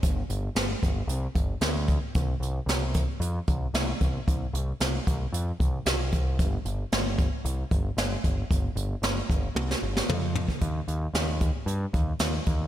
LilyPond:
<<
  \new Staff \with { instrumentName = "Picked electric bass" } { \clef bass \time 4/4 \key c \dorian \tempo 4 = 113 g,,8 g,,8 g,,8 g,,8 c,8 g,,8 d,4 | c,8 c,8 c,4 f,8 c,8 c,8 c,8 | c,8 c,8 c,8 c,8 f,8 c,8 c,4 | g,,8 g,,8 g,,4 c,8 g,,8 g,,8 g,,8 |
g,,8 g,,8 g,,8 g,,8 c,8 g,,8 f,4 | ees,8 ees,8 ees,4 g,8 ees,8 ees,8 ees,8 | }
  \new DrumStaff \with { instrumentName = "Drums" } \drummode { \time 4/4 <hh bd>8 hh8 <hh sn>8 <hh bd>8 hh8 <hh bd>8 <hh sn>8 <hh bd>8 | <hh bd>8 hh8 <hh sn>8 <hh bd>8 hh8 <hh bd>8 <hh sn>8 <hh bd>8 | <hh bd>8 hh8 <hh sn>8 <hh bd>8 hh8 <hh bd>8 <hh sn>8 <hh bd>8 | <hh bd>8 hh8 <hh sn>8 <hh bd>8 hh8 <hh bd>8 <hh sn>8 <hh bd>8 |
<hh bd>8 hh8 <hh sn>8 <hh bd>8 tommh16 sn8 sn16 toml8 tomfh16 bd16 | <hh bd>8 hh8 <hh sn>8 <hh bd>8 hh8 <hh bd>8 <hh sn>8 <hh bd>8 | }
>>